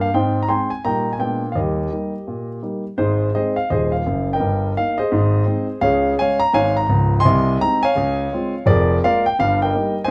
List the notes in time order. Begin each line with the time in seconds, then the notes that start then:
0.01 F5
0.14 G#2 C4 C5 D#5 G5
0.43 A#5
0.48 G#3 C4 D#4 G5 G#5 C6
0.70 G#5
0.85 A#2 G3 A#3 D#4 D#5 G5 A#5
1.13 G#5
1.19 A#2 G#3 B3 D4 G5
1.52 D#2 D#5 F5
1.57 G3 G4 A#4
1.92 G3 A#3 D#4
2.28 A#2
2.62 G3 A#3 D#4
2.98 G#1 G#2 D#4 G#4 C5
3.35 G#3 C4 D#4 G#4 C5 D#5
3.56 F5
3.70 D#1 D#2 G#4 C5 D#5
3.92 F5
4.06 F#1 F#2
4.33 A#4 D#5 G5
4.39 G1 G2
4.77 A#3 D#4 F5
4.98 G#4 C5 D#5
5.12 G#1 G#2
5.46 G#3 C4 D#4
5.81 C#2 C#3 G#4 C#5 F5
6.19 G#3 C#4 C#5 F5 G#5
6.40 A#5
6.53 G#1 G#2 C#5 F5 G#5
6.77 A#5
6.89 C#1 C#2
7.20 D#5 G#5 C6
7.25 C2 C3
7.60 G#3 C4 D#4 A#5
7.83 C#5 F5 G#5
7.95 C#2 C#3
8.33 G#3 C4 F4
8.66 F1 F2 G#4 A#4 D5
9.04 G#3 A#3 F4 A#4 D5 F5
9.26 G5
9.39 G1 G2 F5
9.62 A#4 D#5 G5
9.74 G3 A#3 D#4
10.04 C5 D#5 G#5